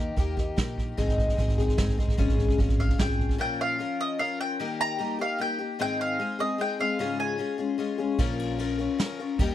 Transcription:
Already playing: D#2 D#3 A#3 D#4 G4
0.17 D#2 D#3 A#3 D#4 G4, kick, closed hi-hat
0.37 A#3 D#4 G4, kick
0.56 A#1 D#3 A#3 D#4 G4, kick, snare, closed hi-hat
0.78 kick
0.97 G#1 G#2 D#3 G#3 C4 D#4 G#4, kick, closed hi-hat
1.08 kick
1.18 kick
1.28 kick
1.37 G#1 G#3 C4 D#4 G#4, kick, closed hi-hat
1.48 kick
1.58 G#3 C4 D#4 G#4, kick
1.68 kick
1.77 G#2 G#3 C4 D#4 G#4, kick, snare, closed hi-hat
1.88 kick
1.98 G#3 C4 D#4 G#4, kick
2.08 kick
2.17 G#1 G#2 C#3 G#3 C#4 F4 G#4, kick
2.28 kick
2.38 kick
2.49 kick
2.58 G#1 G#3 C#4 F4 G#4, kick
2.69 kick
2.79 F5, kick
2.89 kick
2.98 G#1 G#3 C#4 F4 G#4 G5, kick, snare
3.09 kick
3.19 kick
3.29 kick
3.38 A#2 F3 C#4 F4 A#4 G5
3.61 F5
3.79 F3 C#4 F4 A#4
4.01 D#5
4.19 F3 C#4 F4 A#4 F5
4.41 G5
4.59 D#3 G3 A#3 D#4 G4
4.81 A#5
4.98 G3 A#3 D#4 G4
5.19 A#3 D#4 G4 F5
5.38 G3 A#3 D#4 G4 G5
5.59 A#3 D#4 G4
5.79 G#2 D#3 G#3 C4 D#4 G#4 G5
6.01 F5
6.19 G#3 C4 D#4 G#4
6.39 G#3 C4 D#4 G#4 D#5
6.58 G#3 C4 D#4 G#4 G5
6.79 G#3 C4 D#4 G#4 F5
6.99 G#2 C#3 G#3 C#4 F4 G#4
7.20 G#5
7.38 G#3 C#4 F4 G#4
7.58 G#3 C#4 F4 G#4
7.78 G#3 C#4 F4 G#4
7.98 G#3 C#4 F4 G#4
8.18 A#1 A#2 F3 C#4 F4 A#4, kick, ride
8.39 ride
8.58 F3 C#4 F4 A#4, ride
8.78 C#4 F4 A#4
8.99 F3 C#4 F4 A#4, snare, ride
9.19 C#4 F4 A#4
9.39 D#2 D#3 G3 A#3 D#4 G4, kick, ride

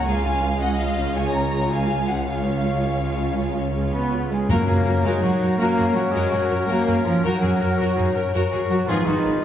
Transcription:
0.05 C#2 F4 G#4 F5 G#5
0.23 C#4 F4 G#5
0.42 F4 G#4
0.60 C#4 F4 D#5 F#5
0.78 F4 G#4 F5
0.97 C#4 F4
1.15 F4 G#4 C#5 G#5
1.32 C#4 F4 A#5
1.51 F4 G#4
1.70 C#4 F4 F5 G#5
1.89 F4 G#4
2.08 C#4 F4 F#5
2.26 F4 G#4 C#5 F5
2.45 C#4 F4
2.64 F4 G#4
2.82 C#4 F4
3.01 F4 G#4
3.19 C#4 F4
3.37 F4 G#4
3.56 C#4 F4
3.75 F4 G#4
3.92 B3 C#4 F4 B4 B5
4.12 F4 G#4
4.31 G#3 C#4 F4 G#4 G#5
4.49 F#2 A#3 C#4 F#4 A#4 C#5 A#5
4.67 F#2 A#3 F#4 G#4 A#4 A#5
4.86 F#2 F#4 A#4
5.02 F#2 G#3 D#4 F#4 G#4 A#4 G#5
5.22 F#2 F#3 F#4 G#4 F#5
5.41 F#2 F#4 A#4
5.58 F#2 A#3 C#4 F#4 A#4 C#5 A#5
5.76 F#2 F#4 G#4
5.95 F#2 F#3 F#4 A#4 F#5
6.12 F#2 G#3 F#4 G#4 A#4 G#5
6.30 F#2 F#3 F#4 G#4 F#5
6.50 F#2 F#4 A#4
6.65 F#2 A#3 F#4 A#4 C#5
6.70 F#4 A#5
6.86 F#2 F#4 G#4
7.04 F#2 F3 F4 F#4 A#4 F5
7.23 F#2 F#3 D#4 F#4 A#4 C#5 F#5
7.41 F#2 C#4 F#4 G#4
7.60 F#2 F#4 A#4
7.79 F#2 F#4 A#4
7.96 F#2 D#4 F#4 G#4
8.15 F#2 C#4 F#4 A#4
8.33 F#2 F#4 A#4
8.52 F#2 F#4 G#4
8.70 F#2 F#3 F#4 A#4 F#5
8.87 G#1 F3 D#4 F4 G#4 B4 F5
9.06 G#1 D#3 D#4 F#4 D#5
9.24 G#1 D#4 G#4

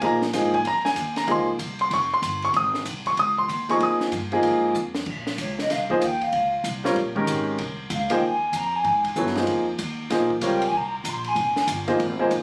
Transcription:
0.01 A#2 F3 A#3 D#4 G#4 A#5, ride
0.22 snare
0.33 G#2 F3 A#3 D#4 G#4, snare, hi-hat pedal, ride
0.54 G#5, kick, ride
0.65 F2 A#5, ride
0.85 G#5, snare
0.96 D#2, hi-hat pedal, ride
1.16 A#5, snare, ride
1.27 C#2 F3 A#3 D#4 G#4, ride
1.31 C6
1.59 C2, hi-hat pedal, ride
1.79 C6, ride
1.90 F1 C#6, ride
2.14 C6
2.22 G1, hi-hat pedal, ride
2.42 C#6, ride
2.54 G#1 D#6, ride
2.74 snare
2.85 C2, hi-hat pedal, ride
3.06 C#6, kick, ride
3.17 C#2 D#6, ride
3.38 C6, kick
3.48 D#2, hi-hat pedal, ride
3.69 F3 A#3 D#4 G#4 C#6, ride
3.80 F2 D#6, ride
4.00 snare
4.12 G2, hi-hat pedal, ride
4.32 F3 A#3 D#4 G#4, ride
4.43 G#2, ride
4.75 F2, hi-hat pedal
4.95 snare
5.06 A#1, kick, crash
5.27 snare
5.38 C#2 C#5, hi-hat pedal, ride
5.59 D#5, snare
5.70 C2 F5, snare, ride
5.90 F3 A#3 D#4 G#4 C5, kick
6.01 D#2 G5, hi-hat pedal, ride
6.21 F5, kick, ride
6.32 C#2, ride
6.64 C2, hi-hat pedal, ride
6.84 G3 C4 F4 A#4 C#5, snare
6.96 A#1, ride
7.15 D#3 G#3 C#4 G4 A#4, kick
7.27 G#1, hi-hat pedal, ride
7.58 C2, ride
7.90 C#2 F5, hi-hat pedal, ride
8.10 F3 A#3 D#4 G#4 C5 G5, ride
8.21 D#2
8.26 G#5
8.53 F2 A#5, hi-hat pedal, ride
8.75 G#5
8.84 G#2, ride
9.04 kick, ride
9.16 G2 F#3 B3 E4 A4 C#5, hi-hat pedal
9.27 snare
9.35 F3 A#3 D#4 G#4 C5, snare, ride
9.47 F2, ride
9.79 D#2, hi-hat pedal, ride
10.10 A#1 F3 A#3 D#4 G#4 C5, snare, ride
10.30 kick
10.41 C#2 G3 C4 F4 A#4 C#5 G5, hi-hat pedal, ride
10.62 G#5, ride
10.72 C2
10.77 A#5
11.04 A#1, hi-hat pedal, ride
11.08 C6
11.24 G#5, ride
11.35 F1, ride
11.56 snare
11.67 G1, hi-hat pedal, ride
11.88 F3 A#3 D#4 G#4 C5, ride
11.99 G#1, ride
12.19 F3 A#3 D#4 G#4 C5, kick
12.31 A#1, hi-hat pedal, ride

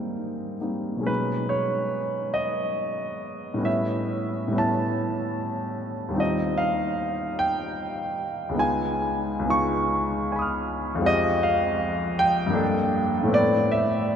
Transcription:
Already playing: G3 A#3 C4 D#4 G#4
0.61 G3 A#3 C4 D#4
0.96 B2 F#3
1.01 G#3 C#4
1.06 D#4 B4
1.49 C#5
2.34 D#5
3.54 A2 G3 B3
3.61 C#4 E4
3.65 E5
4.48 A2 G3
4.53 B3 C#4
4.58 E4 A5
6.08 D#2 G3
6.14 C4 D#4 F4
6.20 D#5
6.58 F5
7.39 G5
8.49 C#2 G#3
8.54 B3 D#4
8.59 F4 G#5
9.39 C#2 G#3
9.45 B3 D#4
9.50 F4 C#6
10.32 G#5 B5
10.39 D#6 F6
10.95 F2 G#3
11.00 C4 F4
11.06 G4 D#5
11.43 F5
12.19 G5
12.47 G2 A#3
12.53 D4 A4
13.23 A2 A3
13.28 B3 C4
13.33 B4 D5
13.72 E5

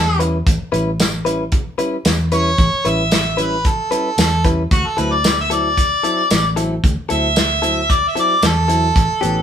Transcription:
Already playing: E2 A4
0.19 G3 C#4 E4 B4, closed hi-hat
0.47 A1, kick, closed hi-hat
0.72 A1 G3 C#4 E4 B4, closed hi-hat
1.00 snare, closed hi-hat, tambourine
1.25 G3 C#4 E4 B4, closed hi-hat
1.52 kick, closed hi-hat
1.78 G3 C#4 E4 B4, closed hi-hat
2.05 E2, snare, closed hi-hat, tambourine
2.32 G3 C#4 E4 B4 C#5, closed hi-hat
2.58 A1, kick, closed hi-hat
2.74 muted fingered electric bass stroke
2.85 A1 G3 C#4 E4 B4 E5, closed hi-hat
3.11 snare, closed hi-hat, tambourine
3.37 G3 C#4 E4 B4, closed hi-hat
3.42 B4
3.65 A4, kick, closed hi-hat
3.91 G3 C#4 E4 B4, closed hi-hat
4.18 E2 A4, snare, closed hi-hat, tambourine
4.44 G3 C#4 E4 B4, kick, closed hi-hat
4.71 D2 F#4, kick, closed hi-hat
4.86 A4
4.97 D2 F#3 C4 E4 A4 B4, closed hi-hat
5.13 D5
5.24 snare, closed hi-hat, tambourine
5.41 E5
5.50 F#3 C4 E4 A4 D5, closed hi-hat
5.78 kick, closed hi-hat
6.03 F#3 C4 E4 A4, closed hi-hat
6.31 A1, snare, closed hi-hat, tambourine
6.56 F#3 C4 E4 A4, closed hi-hat
6.84 D2, kick, closed hi-hat
7.09 D2 F#3 C4 E4 A4 E5, closed hi-hat
7.36 snare, closed hi-hat, tambourine
7.62 F#3 C4 E4 A4, closed hi-hat
7.90 D5, kick, closed hi-hat
8.08 E5
8.15 F#3 C4 E4 A4, closed hi-hat
8.20 D5
8.43 E2 A4, snare, closed hi-hat, tambourine
8.68 F#3 C4 E4 A4, closed hi-hat
8.96 A1, kick, closed hi-hat
9.21 A1 E3 B3 C#4 G4, closed hi-hat

